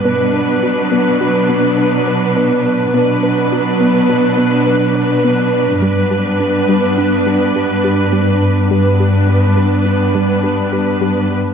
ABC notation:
X:1
M:5/4
L:1/8
Q:1/4=104
K:Bm
V:1 name="Viola section"
[DB]8- [DB]2 | [DB]8- [DB]2 | [DB]8- [DB]2 | [DB]8- [DB] z |]
V:2 name="Synth pluck"
B, B F B, F B, B B B, z | B, B F B, F B, B B B, z | G, G D G, D G, G G G, z | G, G D G, D G, G G G, z |]
V:3 name="Analog synth pad"
[F,B,DB]8- [F,B,DB]2 | [F,B,DB]8- [F,B,DB]2 | [G,B,DB]8- [G,B,DB]2 | [G,B,DB]8- [G,B,DB]2 |]
V:4 name="Cello section" clef=bass
B,,8- B,,2 | B,,8- B,,2 | G,,8- G,,2 | G,,8- G,, z |]